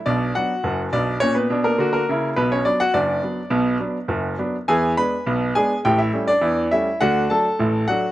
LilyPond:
<<
  \new Staff \with { instrumentName = "Grand piano" } { \time 2/4 \key b \minor \tempo 4 = 104 <d' d''>8 <fis' fis''>4 <d' d''>8 | <cis' cis''>16 <b b'>8 <ais ais'>8 <ais ais'>8. | <b b'>16 <cis' cis''>16 <d' d''>16 <fis' fis''>16 <d' d''>4 | r2 |
<gis' gis''>8 <b' b''>4 <gis' gis''>8 | <g' g''>16 <e' e''>8 <d' d''>8. <e' e''>8 | <fis' fis''>8 <a' a''>4 <fis' fis''>8 | }
  \new Staff \with { instrumentName = "Grand piano" } { \clef bass \time 2/4 \key b \minor <b,, b,>8 <fis b d'>8 <fis,, fis,>8 <b,, b,>8 | ais,8 <b, d'>8 <d fis'>8 <cis e'>8 | <b,, b,>8 <fis b>8 <fis,, fis,>8 <fis b d'>8 | <b,, b,>8 <fis b d'>8 <fis,, fis,>8 <fis b d'>8 |
<e, e>8 <gis b d'>8 <b,, b,>8 <gis b d'>8 | <a,, a,>8 <g a cis'>8 <e, e>8 <g a cis'>8 | <d, d>8 <fis a d'>8 <a,, a,>8 <fis a d'>8 | }
>>